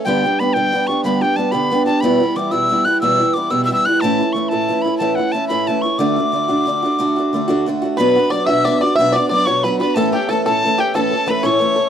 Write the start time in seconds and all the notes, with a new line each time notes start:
0.05 G2 D3 G3 B3 D4 G4 G5
0.23 G3 B3 D4 G4
0.40 G3 B3 D4 G4 B5
0.53 G2 D3 G3 B3 D4 G4 G5
0.72 G3 B3 D4 G4
0.87 D4 G4 C#6
0.91 G3 B3
1.04 G2 D3 G3 B3 D4 G4 B5
1.21 G3 B3 D4 G4 G5
1.36 G3 B3 D4 G4 A5
1.51 G2 D3 G3 B3 D4 G4 B5
1.70 G3 B3 D4 G4
1.86 G3 B3 D4 G4 A5
2.01 E2 B2 E3 G3 B3 B5
2.05 E4
2.20 E3 G3 B3 E4
2.36 E3 G3 B3 E4 D6
2.51 E2 B2 E3 G3 B3 E4 E6
2.69 E3 G3 B3 E4
2.85 G3 B3 E4 F#6
2.89 E3
3.01 E2 B2 E3 G3 B3 E4 E6
3.19 E3 G3 B3 E4
3.34 E3 G3 B3 E4 D6
3.50 E2 B2 E3 G3 B3 E4 E6
3.65 E3 E6
3.70 G3 B3 E4 E6
3.85 G3 B3 E4 F#6
3.90 E3
4.01 A2 E3 A3 C#4 E4 A5
4.19 A3 C#4 E4
4.33 E3 A3 C#4 C#6
4.38 E4
4.49 A3 C#4 E4 A5
4.53 A2 E3
4.69 E3 A3 C#4 E4
4.82 E4 B5
4.86 A3 C#4
4.98 A2 E3 A3 C#4 A5
5.02 E4
5.15 C#4 E4 F#5
5.21 A3
5.32 E3 A3 C#4 A5
5.36 E4
5.48 A2 E3 A3 C#4 E4 B5
5.67 E3 A3 C#4 E4 A5
5.82 C#4 E4 C#6
5.86 A3
5.98 D3 A3 D4 F#4 D6
6.16 A3 D4 F#4
6.32 D3 A3 D4 F#4
6.48 D3 A3 D4 F#4
6.66 D3 A3 D4 F#4
6.82 A3 D4 F#4
6.99 D3 A3 D4 F#4
7.16 A3 D4 F#4
7.33 D3 A3 D4 F#4
7.48 D3 A3 D4 F#4
7.66 D3 A3 D4 F#4
7.82 A3 D4 F#4
7.97 B2 F#3 B3 D4 F#4 B4 B5
8.16 B3 D4 F#4
8.30 F#3 B3 D5 D6
8.34 D4 F#4
8.46 F#3 B3 D4 F#4 E5 E6
8.50 B2
8.65 F#3 B3 D4 D5 D6
8.69 F#4
8.81 D4 F#4 D5 D6
8.86 B3
8.96 B2 F#3 E5 E6
9.00 B3 D4 F#4
9.13 F#4 D5 D6
9.17 B3 D4
9.29 F#3 B3 D5 D6
9.33 D4 F#4 D5
9.46 B2 F#3 B3 D4 F#4 C#5 C#6
9.63 F#3 B3 D4 B4 B5
9.68 F#4
9.79 D4 F#4 B4 B5
9.83 B3
9.95 A2 E3 A3 C#4 A4 A5
10.12 A3 C#4 G4 A4 G5
10.28 E3 A3 C#4 A4 A5
10.33 A4
10.44 A2 E3 A3 C#4 A4 A5
10.64 E3 A3 C#4 A4
10.77 C#4 G4 A4 G5
10.82 A3
10.94 A2 E3 A3 C#4 A4 A5
11.11 C#4 A4
11.15 A3
11.26 E3 A3 C#4 A4 B4 B5
11.43 A2 E3 A3 C#4 A4 C#5 C#6
11.59 E3 A3 C#4
11.63 A4
11.76 A3 C#4 A4